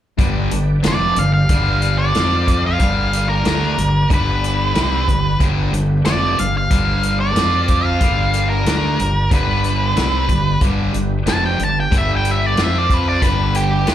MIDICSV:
0, 0, Header, 1, 6, 480
1, 0, Start_track
1, 0, Key_signature, 1, "major"
1, 0, Tempo, 652174
1, 132, Time_signature, 4, 2, 24, 8
1, 10266, End_track
2, 0, Start_track
2, 0, Title_t, "Lead electric guitar"
2, 0, Program_c, 0, 29
2, 644, Note_on_c, 0, 74, 68
2, 862, Note_off_c, 0, 74, 0
2, 875, Note_on_c, 0, 77, 71
2, 974, Note_off_c, 0, 77, 0
2, 983, Note_on_c, 0, 77, 64
2, 1446, Note_off_c, 0, 77, 0
2, 1457, Note_on_c, 0, 74, 99
2, 1923, Note_off_c, 0, 74, 0
2, 1962, Note_on_c, 0, 77, 78
2, 2416, Note_off_c, 0, 77, 0
2, 2420, Note_on_c, 0, 70, 70
2, 3001, Note_off_c, 0, 70, 0
2, 3045, Note_on_c, 0, 71, 82
2, 3964, Note_off_c, 0, 71, 0
2, 4457, Note_on_c, 0, 74, 83
2, 4691, Note_off_c, 0, 74, 0
2, 4705, Note_on_c, 0, 77, 72
2, 4819, Note_off_c, 0, 77, 0
2, 4841, Note_on_c, 0, 77, 72
2, 5296, Note_off_c, 0, 77, 0
2, 5300, Note_on_c, 0, 74, 89
2, 5775, Note_off_c, 0, 74, 0
2, 5775, Note_on_c, 0, 77, 77
2, 6242, Note_off_c, 0, 77, 0
2, 6252, Note_on_c, 0, 70, 80
2, 6837, Note_off_c, 0, 70, 0
2, 6879, Note_on_c, 0, 71, 68
2, 7799, Note_off_c, 0, 71, 0
2, 8311, Note_on_c, 0, 81, 88
2, 8420, Note_off_c, 0, 81, 0
2, 8432, Note_on_c, 0, 79, 91
2, 8562, Note_off_c, 0, 79, 0
2, 8562, Note_on_c, 0, 81, 68
2, 8666, Note_off_c, 0, 81, 0
2, 8686, Note_on_c, 0, 79, 69
2, 8788, Note_off_c, 0, 79, 0
2, 8817, Note_on_c, 0, 76, 68
2, 8913, Note_off_c, 0, 76, 0
2, 8954, Note_on_c, 0, 79, 85
2, 9061, Note_off_c, 0, 79, 0
2, 9061, Note_on_c, 0, 76, 90
2, 9173, Note_off_c, 0, 76, 0
2, 9173, Note_on_c, 0, 74, 85
2, 9271, Note_off_c, 0, 74, 0
2, 9299, Note_on_c, 0, 76, 78
2, 9407, Note_off_c, 0, 76, 0
2, 9407, Note_on_c, 0, 74, 72
2, 9523, Note_off_c, 0, 74, 0
2, 9523, Note_on_c, 0, 71, 97
2, 9627, Note_off_c, 0, 71, 0
2, 9627, Note_on_c, 0, 74, 79
2, 9736, Note_off_c, 0, 74, 0
2, 9739, Note_on_c, 0, 71, 86
2, 9970, Note_off_c, 0, 71, 0
2, 9981, Note_on_c, 0, 67, 79
2, 10266, Note_off_c, 0, 67, 0
2, 10266, End_track
3, 0, Start_track
3, 0, Title_t, "Tonewheel organ"
3, 0, Program_c, 1, 16
3, 145, Note_on_c, 1, 67, 61
3, 150, Note_on_c, 1, 62, 62
3, 150, Note_on_c, 1, 71, 68
3, 152, Note_on_c, 1, 74, 68
3, 1568, Note_off_c, 1, 67, 0
3, 1570, Note_off_c, 1, 62, 0
3, 1570, Note_off_c, 1, 71, 0
3, 1571, Note_off_c, 1, 74, 0
3, 1592, Note_on_c, 1, 65, 61
3, 1595, Note_on_c, 1, 60, 73
3, 1601, Note_on_c, 1, 72, 71
3, 1601, Note_on_c, 1, 77, 69
3, 2060, Note_off_c, 1, 65, 0
3, 2061, Note_off_c, 1, 60, 0
3, 2064, Note_off_c, 1, 72, 0
3, 2064, Note_off_c, 1, 77, 0
3, 2067, Note_on_c, 1, 62, 61
3, 2073, Note_on_c, 1, 74, 63
3, 2076, Note_on_c, 1, 67, 64
3, 3965, Note_off_c, 1, 62, 0
3, 3968, Note_off_c, 1, 74, 0
3, 3970, Note_off_c, 1, 67, 0
3, 3980, Note_on_c, 1, 71, 65
3, 3982, Note_on_c, 1, 62, 61
3, 3984, Note_on_c, 1, 67, 66
3, 5405, Note_off_c, 1, 71, 0
3, 5407, Note_off_c, 1, 62, 0
3, 5407, Note_off_c, 1, 67, 0
3, 5408, Note_on_c, 1, 77, 71
3, 5422, Note_on_c, 1, 65, 67
3, 5424, Note_on_c, 1, 60, 63
3, 5425, Note_on_c, 1, 72, 64
3, 5883, Note_on_c, 1, 74, 65
3, 5889, Note_off_c, 1, 77, 0
3, 5890, Note_on_c, 1, 67, 67
3, 5892, Note_on_c, 1, 62, 64
3, 5896, Note_off_c, 1, 65, 0
3, 5897, Note_off_c, 1, 60, 0
3, 5897, Note_off_c, 1, 72, 0
3, 7790, Note_off_c, 1, 74, 0
3, 7793, Note_off_c, 1, 67, 0
3, 7795, Note_off_c, 1, 62, 0
3, 7819, Note_on_c, 1, 71, 60
3, 7820, Note_on_c, 1, 62, 71
3, 7824, Note_on_c, 1, 67, 67
3, 9242, Note_off_c, 1, 71, 0
3, 9244, Note_off_c, 1, 62, 0
3, 9244, Note_off_c, 1, 67, 0
3, 9260, Note_on_c, 1, 60, 70
3, 9263, Note_on_c, 1, 72, 66
3, 9268, Note_on_c, 1, 65, 68
3, 9268, Note_on_c, 1, 77, 67
3, 9732, Note_off_c, 1, 60, 0
3, 9734, Note_off_c, 1, 72, 0
3, 9736, Note_off_c, 1, 65, 0
3, 9736, Note_off_c, 1, 77, 0
3, 9736, Note_on_c, 1, 71, 69
3, 9740, Note_on_c, 1, 62, 62
3, 9740, Note_on_c, 1, 74, 64
3, 9747, Note_on_c, 1, 67, 66
3, 10266, Note_off_c, 1, 62, 0
3, 10266, Note_off_c, 1, 67, 0
3, 10266, Note_off_c, 1, 71, 0
3, 10266, Note_off_c, 1, 74, 0
3, 10266, End_track
4, 0, Start_track
4, 0, Title_t, "Distorted electric guitar"
4, 0, Program_c, 2, 30
4, 131, Note_on_c, 2, 43, 76
4, 134, Note_on_c, 2, 50, 77
4, 138, Note_on_c, 2, 55, 96
4, 365, Note_off_c, 2, 43, 0
4, 366, Note_off_c, 2, 50, 0
4, 369, Note_off_c, 2, 55, 0
4, 381, Note_on_c, 2, 43, 55
4, 383, Note_on_c, 2, 50, 63
4, 569, Note_off_c, 2, 43, 0
4, 570, Note_off_c, 2, 50, 0
4, 609, Note_on_c, 2, 41, 100
4, 611, Note_on_c, 2, 48, 97
4, 617, Note_on_c, 2, 53, 93
4, 845, Note_off_c, 2, 41, 0
4, 846, Note_off_c, 2, 48, 0
4, 848, Note_off_c, 2, 53, 0
4, 864, Note_on_c, 2, 43, 51
4, 868, Note_on_c, 2, 50, 75
4, 1052, Note_off_c, 2, 43, 0
4, 1053, Note_off_c, 2, 50, 0
4, 1103, Note_on_c, 2, 43, 68
4, 1109, Note_on_c, 2, 50, 87
4, 1109, Note_on_c, 2, 55, 82
4, 1573, Note_off_c, 2, 43, 0
4, 1573, Note_off_c, 2, 50, 0
4, 1576, Note_off_c, 2, 55, 0
4, 1576, Note_on_c, 2, 53, 91
4, 1584, Note_on_c, 2, 60, 90
4, 1586, Note_on_c, 2, 65, 90
4, 2049, Note_off_c, 2, 53, 0
4, 2053, Note_off_c, 2, 60, 0
4, 2055, Note_off_c, 2, 65, 0
4, 2055, Note_on_c, 2, 43, 79
4, 2059, Note_on_c, 2, 50, 73
4, 2063, Note_on_c, 2, 55, 86
4, 2524, Note_off_c, 2, 50, 0
4, 2529, Note_off_c, 2, 43, 0
4, 2533, Note_off_c, 2, 55, 0
4, 2533, Note_on_c, 2, 50, 101
4, 2539, Note_on_c, 2, 57, 109
4, 2542, Note_on_c, 2, 62, 108
4, 2768, Note_off_c, 2, 50, 0
4, 2771, Note_off_c, 2, 57, 0
4, 2773, Note_off_c, 2, 62, 0
4, 2775, Note_on_c, 2, 43, 58
4, 2778, Note_on_c, 2, 50, 72
4, 2969, Note_off_c, 2, 43, 0
4, 2970, Note_off_c, 2, 50, 0
4, 3012, Note_on_c, 2, 43, 77
4, 3018, Note_on_c, 2, 55, 83
4, 3020, Note_on_c, 2, 50, 91
4, 3488, Note_off_c, 2, 43, 0
4, 3488, Note_off_c, 2, 55, 0
4, 3489, Note_off_c, 2, 50, 0
4, 3492, Note_on_c, 2, 48, 96
4, 3496, Note_on_c, 2, 55, 96
4, 3497, Note_on_c, 2, 60, 105
4, 3728, Note_off_c, 2, 48, 0
4, 3730, Note_off_c, 2, 55, 0
4, 3731, Note_off_c, 2, 60, 0
4, 3737, Note_on_c, 2, 43, 64
4, 3741, Note_on_c, 2, 50, 72
4, 3930, Note_off_c, 2, 43, 0
4, 3932, Note_off_c, 2, 50, 0
4, 3972, Note_on_c, 2, 43, 84
4, 3978, Note_on_c, 2, 55, 99
4, 3979, Note_on_c, 2, 50, 75
4, 4208, Note_off_c, 2, 43, 0
4, 4212, Note_off_c, 2, 50, 0
4, 4212, Note_off_c, 2, 55, 0
4, 4217, Note_on_c, 2, 43, 62
4, 4223, Note_on_c, 2, 50, 71
4, 4410, Note_off_c, 2, 43, 0
4, 4413, Note_off_c, 2, 50, 0
4, 4451, Note_on_c, 2, 41, 105
4, 4452, Note_on_c, 2, 48, 108
4, 4456, Note_on_c, 2, 53, 111
4, 4688, Note_off_c, 2, 41, 0
4, 4689, Note_off_c, 2, 48, 0
4, 4691, Note_off_c, 2, 53, 0
4, 4701, Note_on_c, 2, 43, 56
4, 4703, Note_on_c, 2, 50, 74
4, 4892, Note_off_c, 2, 43, 0
4, 4893, Note_off_c, 2, 50, 0
4, 4934, Note_on_c, 2, 43, 77
4, 4938, Note_on_c, 2, 50, 88
4, 4938, Note_on_c, 2, 55, 93
4, 5410, Note_off_c, 2, 43, 0
4, 5416, Note_off_c, 2, 50, 0
4, 5416, Note_on_c, 2, 53, 88
4, 5417, Note_off_c, 2, 55, 0
4, 5417, Note_on_c, 2, 60, 90
4, 5424, Note_on_c, 2, 65, 92
4, 5890, Note_off_c, 2, 53, 0
4, 5891, Note_off_c, 2, 60, 0
4, 5894, Note_off_c, 2, 65, 0
4, 5900, Note_on_c, 2, 43, 69
4, 5901, Note_on_c, 2, 55, 87
4, 5902, Note_on_c, 2, 50, 84
4, 6368, Note_off_c, 2, 50, 0
4, 6372, Note_off_c, 2, 43, 0
4, 6372, Note_off_c, 2, 55, 0
4, 6377, Note_on_c, 2, 50, 94
4, 6377, Note_on_c, 2, 57, 100
4, 6380, Note_on_c, 2, 62, 102
4, 6610, Note_off_c, 2, 50, 0
4, 6610, Note_off_c, 2, 57, 0
4, 6612, Note_off_c, 2, 62, 0
4, 6618, Note_on_c, 2, 43, 59
4, 6621, Note_on_c, 2, 50, 70
4, 6810, Note_off_c, 2, 43, 0
4, 6812, Note_off_c, 2, 50, 0
4, 6852, Note_on_c, 2, 43, 84
4, 6856, Note_on_c, 2, 50, 91
4, 6862, Note_on_c, 2, 55, 77
4, 7322, Note_off_c, 2, 55, 0
4, 7327, Note_off_c, 2, 50, 0
4, 7328, Note_off_c, 2, 43, 0
4, 7330, Note_on_c, 2, 48, 89
4, 7330, Note_on_c, 2, 55, 92
4, 7333, Note_on_c, 2, 60, 109
4, 7566, Note_off_c, 2, 48, 0
4, 7567, Note_off_c, 2, 55, 0
4, 7568, Note_off_c, 2, 60, 0
4, 7572, Note_on_c, 2, 43, 61
4, 7575, Note_on_c, 2, 50, 68
4, 7766, Note_off_c, 2, 43, 0
4, 7768, Note_off_c, 2, 50, 0
4, 7814, Note_on_c, 2, 43, 76
4, 7819, Note_on_c, 2, 50, 83
4, 7821, Note_on_c, 2, 55, 83
4, 8039, Note_off_c, 2, 43, 0
4, 8041, Note_off_c, 2, 50, 0
4, 8048, Note_on_c, 2, 43, 66
4, 8050, Note_on_c, 2, 50, 65
4, 8052, Note_off_c, 2, 55, 0
4, 8244, Note_off_c, 2, 43, 0
4, 8245, Note_off_c, 2, 50, 0
4, 8288, Note_on_c, 2, 41, 97
4, 8290, Note_on_c, 2, 48, 96
4, 8295, Note_on_c, 2, 53, 90
4, 8525, Note_off_c, 2, 41, 0
4, 8526, Note_off_c, 2, 48, 0
4, 8528, Note_off_c, 2, 53, 0
4, 8529, Note_on_c, 2, 43, 55
4, 8533, Note_on_c, 2, 50, 69
4, 8725, Note_off_c, 2, 43, 0
4, 8726, Note_off_c, 2, 50, 0
4, 8763, Note_on_c, 2, 43, 81
4, 8764, Note_on_c, 2, 50, 75
4, 8769, Note_on_c, 2, 55, 97
4, 9242, Note_off_c, 2, 43, 0
4, 9242, Note_off_c, 2, 50, 0
4, 9244, Note_off_c, 2, 55, 0
4, 9246, Note_on_c, 2, 53, 89
4, 9247, Note_on_c, 2, 60, 92
4, 9254, Note_on_c, 2, 65, 101
4, 9723, Note_off_c, 2, 53, 0
4, 9724, Note_off_c, 2, 60, 0
4, 9726, Note_on_c, 2, 43, 89
4, 9727, Note_off_c, 2, 65, 0
4, 9730, Note_on_c, 2, 50, 77
4, 9733, Note_on_c, 2, 55, 94
4, 10196, Note_off_c, 2, 50, 0
4, 10203, Note_off_c, 2, 43, 0
4, 10205, Note_on_c, 2, 50, 84
4, 10206, Note_off_c, 2, 55, 0
4, 10209, Note_on_c, 2, 57, 106
4, 10216, Note_on_c, 2, 62, 103
4, 10266, Note_off_c, 2, 50, 0
4, 10266, Note_off_c, 2, 57, 0
4, 10266, Note_off_c, 2, 62, 0
4, 10266, End_track
5, 0, Start_track
5, 0, Title_t, "Fingered electric bass"
5, 0, Program_c, 3, 33
5, 136, Note_on_c, 3, 31, 84
5, 358, Note_off_c, 3, 31, 0
5, 381, Note_on_c, 3, 31, 63
5, 601, Note_off_c, 3, 31, 0
5, 625, Note_on_c, 3, 29, 83
5, 843, Note_off_c, 3, 29, 0
5, 863, Note_on_c, 3, 31, 78
5, 1083, Note_off_c, 3, 31, 0
5, 1101, Note_on_c, 3, 31, 82
5, 1549, Note_off_c, 3, 31, 0
5, 1585, Note_on_c, 3, 41, 95
5, 2032, Note_off_c, 3, 41, 0
5, 2063, Note_on_c, 3, 31, 87
5, 2511, Note_off_c, 3, 31, 0
5, 2543, Note_on_c, 3, 38, 82
5, 2764, Note_off_c, 3, 38, 0
5, 2779, Note_on_c, 3, 31, 77
5, 3002, Note_off_c, 3, 31, 0
5, 3021, Note_on_c, 3, 31, 79
5, 3471, Note_off_c, 3, 31, 0
5, 3504, Note_on_c, 3, 36, 93
5, 3725, Note_off_c, 3, 36, 0
5, 3738, Note_on_c, 3, 31, 74
5, 3962, Note_off_c, 3, 31, 0
5, 3978, Note_on_c, 3, 31, 92
5, 4202, Note_off_c, 3, 31, 0
5, 4216, Note_on_c, 3, 31, 79
5, 4441, Note_off_c, 3, 31, 0
5, 4457, Note_on_c, 3, 29, 86
5, 4681, Note_off_c, 3, 29, 0
5, 4706, Note_on_c, 3, 31, 72
5, 4926, Note_off_c, 3, 31, 0
5, 4941, Note_on_c, 3, 31, 82
5, 5391, Note_off_c, 3, 31, 0
5, 5414, Note_on_c, 3, 41, 78
5, 5867, Note_off_c, 3, 41, 0
5, 5898, Note_on_c, 3, 31, 86
5, 6349, Note_off_c, 3, 31, 0
5, 6371, Note_on_c, 3, 38, 90
5, 6598, Note_off_c, 3, 38, 0
5, 6620, Note_on_c, 3, 31, 75
5, 6842, Note_off_c, 3, 31, 0
5, 6859, Note_on_c, 3, 31, 93
5, 7309, Note_off_c, 3, 31, 0
5, 7330, Note_on_c, 3, 36, 90
5, 7556, Note_off_c, 3, 36, 0
5, 7573, Note_on_c, 3, 31, 63
5, 7798, Note_off_c, 3, 31, 0
5, 7810, Note_on_c, 3, 31, 85
5, 8037, Note_off_c, 3, 31, 0
5, 8057, Note_on_c, 3, 31, 74
5, 8280, Note_off_c, 3, 31, 0
5, 8291, Note_on_c, 3, 29, 86
5, 8516, Note_off_c, 3, 29, 0
5, 8536, Note_on_c, 3, 31, 69
5, 8759, Note_off_c, 3, 31, 0
5, 8773, Note_on_c, 3, 31, 84
5, 9225, Note_off_c, 3, 31, 0
5, 9256, Note_on_c, 3, 41, 86
5, 9706, Note_off_c, 3, 41, 0
5, 9733, Note_on_c, 3, 31, 91
5, 10184, Note_off_c, 3, 31, 0
5, 10213, Note_on_c, 3, 38, 85
5, 10266, Note_off_c, 3, 38, 0
5, 10266, End_track
6, 0, Start_track
6, 0, Title_t, "Drums"
6, 136, Note_on_c, 9, 42, 68
6, 138, Note_on_c, 9, 36, 96
6, 210, Note_off_c, 9, 42, 0
6, 211, Note_off_c, 9, 36, 0
6, 376, Note_on_c, 9, 42, 68
6, 450, Note_off_c, 9, 42, 0
6, 614, Note_on_c, 9, 42, 87
6, 622, Note_on_c, 9, 38, 116
6, 687, Note_off_c, 9, 42, 0
6, 696, Note_off_c, 9, 38, 0
6, 855, Note_on_c, 9, 42, 64
6, 928, Note_off_c, 9, 42, 0
6, 1096, Note_on_c, 9, 42, 89
6, 1100, Note_on_c, 9, 36, 119
6, 1170, Note_off_c, 9, 42, 0
6, 1173, Note_off_c, 9, 36, 0
6, 1337, Note_on_c, 9, 42, 52
6, 1411, Note_off_c, 9, 42, 0
6, 1579, Note_on_c, 9, 42, 71
6, 1587, Note_on_c, 9, 38, 85
6, 1653, Note_off_c, 9, 42, 0
6, 1661, Note_off_c, 9, 38, 0
6, 1823, Note_on_c, 9, 36, 73
6, 1824, Note_on_c, 9, 42, 57
6, 1897, Note_off_c, 9, 36, 0
6, 1898, Note_off_c, 9, 42, 0
6, 2057, Note_on_c, 9, 42, 77
6, 2061, Note_on_c, 9, 36, 91
6, 2130, Note_off_c, 9, 42, 0
6, 2135, Note_off_c, 9, 36, 0
6, 2304, Note_on_c, 9, 42, 65
6, 2378, Note_off_c, 9, 42, 0
6, 2539, Note_on_c, 9, 42, 70
6, 2547, Note_on_c, 9, 38, 115
6, 2613, Note_off_c, 9, 42, 0
6, 2621, Note_off_c, 9, 38, 0
6, 2784, Note_on_c, 9, 42, 63
6, 2857, Note_off_c, 9, 42, 0
6, 3020, Note_on_c, 9, 36, 123
6, 3022, Note_on_c, 9, 42, 82
6, 3094, Note_off_c, 9, 36, 0
6, 3096, Note_off_c, 9, 42, 0
6, 3268, Note_on_c, 9, 42, 50
6, 3341, Note_off_c, 9, 42, 0
6, 3497, Note_on_c, 9, 42, 70
6, 3505, Note_on_c, 9, 38, 98
6, 3571, Note_off_c, 9, 42, 0
6, 3579, Note_off_c, 9, 38, 0
6, 3738, Note_on_c, 9, 36, 76
6, 3742, Note_on_c, 9, 42, 51
6, 3812, Note_off_c, 9, 36, 0
6, 3816, Note_off_c, 9, 42, 0
6, 3976, Note_on_c, 9, 42, 74
6, 3977, Note_on_c, 9, 36, 94
6, 4050, Note_off_c, 9, 36, 0
6, 4050, Note_off_c, 9, 42, 0
6, 4221, Note_on_c, 9, 42, 69
6, 4295, Note_off_c, 9, 42, 0
6, 4454, Note_on_c, 9, 42, 78
6, 4462, Note_on_c, 9, 38, 104
6, 4528, Note_off_c, 9, 42, 0
6, 4536, Note_off_c, 9, 38, 0
6, 4700, Note_on_c, 9, 42, 66
6, 4774, Note_off_c, 9, 42, 0
6, 4936, Note_on_c, 9, 42, 93
6, 4937, Note_on_c, 9, 36, 108
6, 5010, Note_off_c, 9, 36, 0
6, 5010, Note_off_c, 9, 42, 0
6, 5175, Note_on_c, 9, 42, 59
6, 5249, Note_off_c, 9, 42, 0
6, 5416, Note_on_c, 9, 42, 84
6, 5424, Note_on_c, 9, 38, 98
6, 5490, Note_off_c, 9, 42, 0
6, 5498, Note_off_c, 9, 38, 0
6, 5653, Note_on_c, 9, 42, 57
6, 5657, Note_on_c, 9, 36, 80
6, 5727, Note_off_c, 9, 42, 0
6, 5730, Note_off_c, 9, 36, 0
6, 5892, Note_on_c, 9, 42, 76
6, 5896, Note_on_c, 9, 36, 95
6, 5966, Note_off_c, 9, 42, 0
6, 5969, Note_off_c, 9, 36, 0
6, 6134, Note_on_c, 9, 42, 63
6, 6208, Note_off_c, 9, 42, 0
6, 6375, Note_on_c, 9, 42, 81
6, 6383, Note_on_c, 9, 38, 104
6, 6449, Note_off_c, 9, 42, 0
6, 6457, Note_off_c, 9, 38, 0
6, 6619, Note_on_c, 9, 42, 61
6, 6693, Note_off_c, 9, 42, 0
6, 6853, Note_on_c, 9, 42, 86
6, 6854, Note_on_c, 9, 36, 111
6, 6927, Note_off_c, 9, 42, 0
6, 6928, Note_off_c, 9, 36, 0
6, 7095, Note_on_c, 9, 42, 52
6, 7168, Note_off_c, 9, 42, 0
6, 7334, Note_on_c, 9, 42, 78
6, 7342, Note_on_c, 9, 38, 95
6, 7407, Note_off_c, 9, 42, 0
6, 7416, Note_off_c, 9, 38, 0
6, 7573, Note_on_c, 9, 36, 74
6, 7573, Note_on_c, 9, 42, 55
6, 7646, Note_off_c, 9, 36, 0
6, 7646, Note_off_c, 9, 42, 0
6, 7808, Note_on_c, 9, 42, 68
6, 7811, Note_on_c, 9, 36, 92
6, 7882, Note_off_c, 9, 42, 0
6, 7885, Note_off_c, 9, 36, 0
6, 8053, Note_on_c, 9, 42, 61
6, 8127, Note_off_c, 9, 42, 0
6, 8291, Note_on_c, 9, 42, 79
6, 8299, Note_on_c, 9, 38, 118
6, 8365, Note_off_c, 9, 42, 0
6, 8373, Note_off_c, 9, 38, 0
6, 8533, Note_on_c, 9, 42, 56
6, 8607, Note_off_c, 9, 42, 0
6, 8773, Note_on_c, 9, 36, 115
6, 8775, Note_on_c, 9, 42, 85
6, 8847, Note_off_c, 9, 36, 0
6, 8849, Note_off_c, 9, 42, 0
6, 9014, Note_on_c, 9, 42, 50
6, 9088, Note_off_c, 9, 42, 0
6, 9252, Note_on_c, 9, 42, 72
6, 9260, Note_on_c, 9, 38, 86
6, 9326, Note_off_c, 9, 42, 0
6, 9334, Note_off_c, 9, 38, 0
6, 9492, Note_on_c, 9, 36, 74
6, 9497, Note_on_c, 9, 42, 54
6, 9566, Note_off_c, 9, 36, 0
6, 9570, Note_off_c, 9, 42, 0
6, 9731, Note_on_c, 9, 36, 89
6, 9731, Note_on_c, 9, 42, 76
6, 9804, Note_off_c, 9, 36, 0
6, 9805, Note_off_c, 9, 42, 0
6, 9969, Note_on_c, 9, 42, 63
6, 10043, Note_off_c, 9, 42, 0
6, 10207, Note_on_c, 9, 42, 80
6, 10215, Note_on_c, 9, 38, 114
6, 10266, Note_off_c, 9, 38, 0
6, 10266, Note_off_c, 9, 42, 0
6, 10266, End_track
0, 0, End_of_file